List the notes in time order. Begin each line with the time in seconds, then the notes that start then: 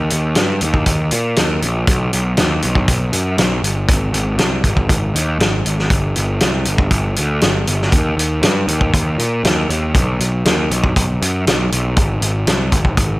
0.10 D#2, closed hi-hat
0.35 G2, snare, closed hi-hat
0.61 D#2, closed hi-hat
0.74 kick
0.86 D#2, kick, closed hi-hat
1.11 A#2, closed hi-hat
1.36 D#2, snare, closed hi-hat
1.62 A#1, closed hi-hat
1.87 B1, kick, closed hi-hat
2.13 B1, closed hi-hat
2.37 D#2, snare, closed hi-hat
2.62 B1, closed hi-hat
2.75 kick
2.88 B1, kick, closed hi-hat
3.13 F#2, closed hi-hat
3.38 B1, snare, closed hi-hat
3.62 G1, closed hi-hat
3.89 G#1, kick, closed hi-hat
4.13 G#1, closed hi-hat
4.37 C2, snare, closed hi-hat
4.64 G#1, kick, closed hi-hat
4.77 kick
4.89 G#1, kick, closed hi-hat
5.14 D#2, closed hi-hat
5.39 G#1, snare, closed hi-hat
5.65 G#1, closed hi-hat
5.79 snare
5.90 G1, kick, closed hi-hat
6.16 G1, closed hi-hat
6.40 C2, snare, closed hi-hat
6.65 G1, closed hi-hat
6.78 kick
6.91 G1, kick, closed hi-hat
7.16 D2, closed hi-hat
7.41 G1, snare, closed hi-hat
7.67 G1, closed hi-hat
7.82 snare
7.92 D#2, kick, closed hi-hat
8.17 D#2, closed hi-hat
8.42 G2, snare, closed hi-hat
8.67 D#2, closed hi-hat
8.81 kick
8.94 D#2, kick, closed hi-hat
9.18 A#2, closed hi-hat
9.44 D#2, snare, closed hi-hat
9.69 D#2, closed hi-hat
9.95 B1, kick, closed hi-hat
10.20 B1, closed hi-hat
10.45 D#2, snare, closed hi-hat
10.70 B1, closed hi-hat
10.84 kick
10.96 B1, kick, closed hi-hat
11.22 F#2, closed hi-hat
11.47 B1, snare, closed hi-hat
11.72 B1, closed hi-hat
11.96 G#1, kick, closed hi-hat
12.21 G#1, closed hi-hat
12.47 C2, snare, closed hi-hat
12.72 G#1, kick, closed hi-hat
12.85 kick
12.97 G#1, kick, closed hi-hat